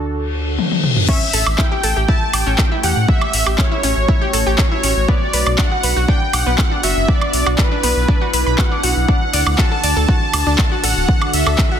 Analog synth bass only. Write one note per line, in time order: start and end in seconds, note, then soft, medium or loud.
0.00 0.59 D2 medium
1.34 1.44 A1 medium
1.47 1.56 A1 medium
1.83 1.94 A1 medium
1.97 2.06 A1 medium
2.33 2.44 A1 medium
2.47 2.56 A1 medium
2.84 2.94 E2 medium
2.97 3.06 A2 medium
3.34 3.44 A1 medium
3.47 3.56 A1 medium
3.83 3.94 A1 medium
3.97 4.06 A1 medium
4.33 4.44 A1 loud
4.47 4.56 A1 medium
4.83 4.94 A1 medium
4.97 5.06 A1 medium
5.33 5.44 B1 loud
5.47 5.56 B1 medium
5.83 5.94 B1 medium
5.97 6.06 B1 medium
6.33 6.44 B1 medium
6.47 6.56 B1 medium
6.83 6.94 F#1 medium
6.97 7.06 F#1 medium
7.33 7.44 B1 medium
7.47 7.56 B1 medium
7.83 7.94 B1 loud
7.97 8.06 B1 medium
8.33 8.44 B1 loud
8.47 8.56 B1 medium
8.83 8.94 B1 medium
8.97 9.06 B1 medium
9.34 9.44 D2 loud
9.47 9.56 D2 medium
9.84 9.94 D2 medium
9.97 10.06 D2 medium
10.34 10.44 D2 medium
10.47 10.56 D2 medium
10.84 10.94 A1 medium
10.97 11.06 D1 medium
11.34 11.44 D2 medium
11.47 11.56 D2 medium